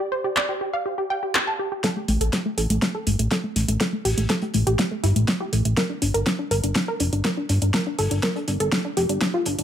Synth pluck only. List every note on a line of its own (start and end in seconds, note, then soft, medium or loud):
0.12 0.21 C5 medium
0.24 0.33 G4 medium
0.36 0.46 D5 medium
0.49 0.58 G4 medium
0.61 0.70 G4 medium
0.73 0.82 F5 medium
0.86 0.95 G4 medium
0.98 1.07 G4 medium
1.10 1.19 G5 medium
1.23 1.32 G4 medium
1.35 1.44 G4 medium
1.47 1.56 A5 medium
1.59 1.69 G4 medium
1.72 1.81 G4 medium
1.84 1.93 A4 loud
1.97 2.05 A3 medium
2.09 2.18 A3 medium
2.21 2.30 A4 medium
2.33 2.42 A3 medium
2.46 2.55 A3 medium
2.58 2.67 A4 medium
2.70 2.79 A3 medium
2.82 2.92 A3 medium
2.95 3.04 A4 medium
3.07 3.16 A3 medium
3.19 3.28 A3 medium
3.31 3.41 A4 medium
3.44 3.53 A3 medium
3.56 3.65 A3 medium
3.68 3.77 A3 medium
3.80 3.90 A4 medium
3.93 4.02 A3 medium
4.05 4.14 G4 medium
4.18 4.27 A3 medium
4.30 4.39 A4 medium
4.42 4.51 A3 medium
4.54 4.64 A3 medium
4.67 4.76 G4 loud
4.79 4.88 A3 medium
4.91 5.00 A3 medium
5.04 5.13 E4 loud
5.16 5.25 A3 medium
5.28 5.37 A3 medium
5.40 5.50 G4 medium
5.53 5.62 A3 medium
5.65 5.74 A3 medium
5.77 5.87 A#4 loud
5.90 5.99 D4 medium
6.02 6.11 D4 medium
6.14 6.23 A#4 medium
6.27 6.36 D4 medium
6.39 6.48 D4 medium
6.51 6.60 A#4 loud
6.64 6.73 D4 medium
6.76 6.85 D4 medium
6.88 6.97 A#4 loud
7.00 7.10 D4 medium
7.13 7.22 D4 medium
7.25 7.34 A#4 medium
7.37 7.46 D4 medium
7.50 7.59 D4 medium
7.62 7.71 D4 medium
7.74 7.83 A#4 medium
7.87 7.96 D4 medium
7.99 8.08 A4 medium
8.11 8.20 D4 medium
8.23 8.33 A#4 loud
8.36 8.45 D4 medium
8.48 8.57 D4 medium
8.60 8.69 A4 loud
8.72 8.82 D4 medium
8.85 8.94 D4 medium
8.97 9.06 G4 medium
9.09 9.18 D4 medium
9.22 9.31 D4 medium
9.34 9.43 F4 medium
9.46 9.55 D4 medium
9.59 9.63 D4 medium